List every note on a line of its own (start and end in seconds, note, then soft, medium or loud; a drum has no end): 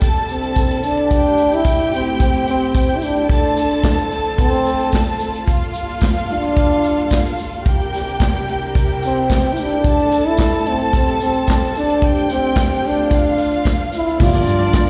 0.00 1.09 C3 medium
0.00 1.08 G3 medium
0.00 1.07 A#3 soft
0.00 1.09 D4 medium
0.00 5.44 E4 medium
0.00 1.09 A4 medium
0.00 1.09 A5 medium
0.00 kick loud
0.00 closed hi-hat medium
0.00 tambourine soft
0.16 closed hi-hat soft
0.29 0.87 C4 medium
0.29 closed hi-hat soft
0.29 tambourine soft
0.42 closed hi-hat soft
0.56 kick medium
0.56 closed hi-hat medium
0.56 tambourine medium
0.71 closed hi-hat soft
0.83 1.56 D4 loud
0.83 closed hi-hat medium
0.83 tambourine soft
0.97 closed hi-hat soft
1.11 3.27 A2 medium
1.11 3.27 A3 medium
1.11 3.27 C4 medium
1.11 3.28 G4 medium
1.11 3.26 G4 medium
1.11 3.26 G5 loud
1.11 kick loud
1.11 closed hi-hat medium
1.11 tambourine soft
1.26 closed hi-hat soft
1.38 closed hi-hat medium
1.38 tambourine soft
1.51 1.94 E4 loud
1.51 closed hi-hat soft
1.64 kick medium
1.64 closed hi-hat medium
1.64 tambourine medium
1.79 closed hi-hat soft
1.93 2.19 C4 medium
1.93 closed hi-hat medium
1.93 tambourine soft
2.06 closed hi-hat soft
2.20 2.47 C4 medium
2.20 kick loud
2.20 closed hi-hat medium
2.20 tambourine soft
2.34 closed hi-hat soft
2.48 2.98 C4 medium
2.48 closed hi-hat soft
2.48 tambourine soft
2.61 closed hi-hat soft
2.74 kick medium
2.74 closed hi-hat medium
2.74 tambourine medium
2.90 closed hi-hat soft
2.97 3.06 E4 medium
3.01 3.30 D4 medium
3.01 closed hi-hat medium
3.01 tambourine medium
3.16 closed hi-hat soft
3.29 5.46 D2 medium
3.29 5.46 D3 medium
3.29 5.45 C4 medium
3.29 4.08 D4 medium
3.29 7.62 F4 medium
3.29 5.44 A4 medium
3.29 5.44 A5 medium
3.29 kick medium
3.29 closed hi-hat medium
3.29 tambourine soft
3.45 closed hi-hat soft
3.57 closed hi-hat medium
3.57 tambourine soft
3.71 closed hi-hat soft
3.83 kick loud
3.83 snare loud
3.83 clap medium
3.83 tambourine medium
3.98 closed hi-hat soft
4.11 closed hi-hat medium
4.11 tambourine soft
4.24 closed hi-hat soft
4.38 5.16 C4 loud
4.38 kick loud
4.38 closed hi-hat medium
4.38 tambourine soft
4.53 closed hi-hat soft
4.65 closed hi-hat medium
4.65 tambourine soft
4.79 closed hi-hat soft
4.92 kick medium
4.92 snare medium
4.92 clap medium
4.92 tambourine medium
5.08 closed hi-hat soft
5.19 closed hi-hat medium
5.19 tambourine medium
5.34 closed hi-hat soft
5.47 7.63 G2 medium
5.47 7.64 G3 medium
5.47 7.63 A#3 medium
5.47 7.62 F4 medium
5.47 7.63 A4 medium
5.47 7.62 F5 medium
5.47 kick loud
5.47 closed hi-hat medium
5.47 tambourine soft
5.63 closed hi-hat soft
5.74 closed hi-hat medium
5.74 tambourine soft
5.89 closed hi-hat soft
6.01 kick medium
6.01 snare loud
6.01 clap medium
6.01 tambourine medium
6.16 closed hi-hat soft
6.30 7.35 D4 loud
6.30 closed hi-hat medium
6.43 closed hi-hat soft
6.56 kick loud
6.56 closed hi-hat medium
6.56 tambourine soft
6.71 closed hi-hat soft
6.83 closed hi-hat medium
6.83 tambourine soft
6.97 closed hi-hat soft
7.11 kick medium
7.11 snare medium
7.11 clap medium
7.11 tambourine medium
7.26 closed hi-hat soft
7.38 closed hi-hat medium
7.38 tambourine medium
7.53 closed hi-hat soft
7.65 9.82 C3 medium
7.65 9.82 G3 medium
7.65 9.82 D4 medium
7.65 11.98 E4 medium
7.65 9.26 G4 medium
7.65 9.82 A#4 medium
7.65 9.26 G5 medium
7.65 kick loud
7.65 closed hi-hat medium
7.65 tambourine soft
7.81 closed hi-hat soft
7.94 snare soft
7.94 closed hi-hat medium
7.94 tambourine medium
8.07 closed hi-hat soft
8.20 kick loud
8.20 snare loud
8.20 clap medium
8.20 tambourine medium
8.34 closed hi-hat soft
8.48 closed hi-hat medium
8.61 closed hi-hat soft
8.75 kick loud
8.75 closed hi-hat medium
8.75 tambourine soft
8.89 closed hi-hat soft
9.03 9.54 C4 medium
9.03 closed hi-hat medium
9.03 tambourine soft
9.16 closed hi-hat soft
9.29 9.83 G4 medium
9.29 9.83 G5 medium
9.29 kick medium
9.29 snare medium
9.29 clap medium
9.29 tambourine medium
9.45 closed hi-hat soft
9.53 9.63 E4 medium
9.53 tambourine medium
9.58 10.29 D4 loud
9.58 open hi-hat medium
9.71 closed hi-hat soft
9.84 12.01 A2 medium
9.84 12.00 G3 medium
9.84 14.16 C4 medium
9.84 11.98 A4 medium
9.84 12.01 A4 medium
9.84 11.98 A5 medium
9.84 kick loud
9.84 closed hi-hat medium
9.84 tambourine soft
9.99 closed hi-hat soft
10.12 closed hi-hat medium
10.12 tambourine medium
10.26 10.70 E4 loud
10.26 closed hi-hat soft
10.37 kick medium
10.37 snare loud
10.37 clap medium
10.37 tambourine medium
10.53 closed hi-hat soft
10.66 10.94 C4 medium
10.66 closed hi-hat medium
10.66 tambourine soft
10.79 closed hi-hat soft
10.93 11.20 C4 medium
10.93 kick loud
10.93 closed hi-hat medium
10.93 tambourine soft
11.08 closed hi-hat soft
11.20 11.72 C4 medium
11.20 closed hi-hat medium
11.20 tambourine soft
11.33 closed hi-hat medium
11.47 kick medium
11.47 snare medium
11.47 clap medium
11.47 tambourine medium
11.63 closed hi-hat soft
11.75 12.27 D4 medium
11.75 open hi-hat medium
11.75 tambourine medium
11.89 closed hi-hat soft
12.02 14.19 D2 medium
12.02 14.18 D3 medium
12.02 14.18 D4 medium
12.02 14.18 F4 medium
12.02 13.09 G4 medium
12.02 13.09 G5 medium
12.02 kick loud
12.02 closed hi-hat medium
12.17 closed hi-hat soft
12.29 12.88 C4 medium
12.29 snare soft
12.29 closed hi-hat medium
12.29 tambourine medium
12.43 closed hi-hat soft
12.56 kick loud
12.56 snare loud
12.56 clap loud
12.56 tambourine medium
12.70 closed hi-hat soft
12.84 13.67 D4 medium
12.84 open hi-hat medium
12.96 closed hi-hat soft
13.10 14.18 F4 medium
13.10 14.18 F5 medium
13.10 kick loud
13.10 closed hi-hat medium
13.10 tambourine medium
13.25 closed hi-hat soft
13.38 closed hi-hat soft
13.38 tambourine soft
13.50 closed hi-hat medium
13.65 kick medium
13.65 snare medium
13.65 clap medium
13.65 tambourine medium
13.80 closed hi-hat soft
13.92 closed hi-hat medium
13.92 tambourine medium
13.97 14.24 E4 medium
14.07 closed hi-hat soft
14.18 14.29 G1 loud
14.18 14.90 D3 medium
14.18 14.90 F3 medium
14.18 14.90 G3 medium
14.18 14.90 A#3 medium
14.18 14.90 D4 loud
14.18 14.90 F4 medium
14.18 14.90 A#4 medium
14.18 14.90 D5 loud
14.18 14.90 D5 medium
14.18 kick loud
14.18 crash loud
14.18 tambourine soft
14.22 14.90 F4 loud
14.22 14.90 G5 medium
14.34 14.44 G1 loud
14.34 closed hi-hat soft
14.47 14.66 G2 loud
14.47 snare soft
14.47 closed hi-hat medium
14.47 tambourine medium
14.60 closed hi-hat soft
14.73 14.90 G1 medium
14.73 kick loud
14.73 snare loud
14.73 clap loud
14.73 tambourine loud